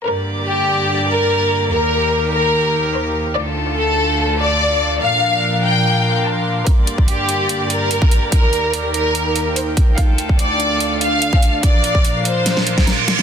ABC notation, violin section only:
X:1
M:4/4
L:1/8
Q:"Swing 16ths" 1/4=145
K:Gm
V:1 name="Violin section"
B2 G3 B3 | B3 B3 c2 | d2 A3 d3 | f3 g3 a2 |
B2 G3 B3 | B3 B3 c2 | f2 d3 f3 | d3 c3 B2 |]